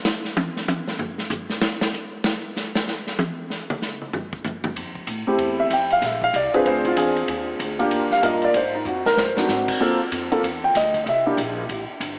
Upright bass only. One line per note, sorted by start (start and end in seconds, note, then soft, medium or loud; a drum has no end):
4.76 5.07 F2 medium
5.07 5.26 A2 medium
5.27 muted upright bass stroke soft
5.38 5.69 E2 medium
5.70 6.01 F2 medium
6.02 6.32 A#1 medium
6.33 6.52 C2 medium
6.54 muted upright bass stroke soft
6.65 6.96 D2 medium
6.97 7.27 E2 medium
7.28 7.59 D#2 medium
7.59 7.90 D2 medium
7.91 8.22 D#2 medium
8.23 8.53 G2 medium
8.54 8.84 G#2 medium
8.85 9.16 F2 medium
9.16 9.47 F#2 medium
9.49 9.79 G#2 medium
9.80 9.99 G2 medium
9.99 muted upright bass stroke soft
10.12 10.42 F2 medium
10.43 10.74 E2 medium
10.75 11.05 D2 medium
11.06 11.37 C2 medium
11.37 11.68 A#1 medium
11.69 11.87 A1 medium
12.00 12.19 G1 medium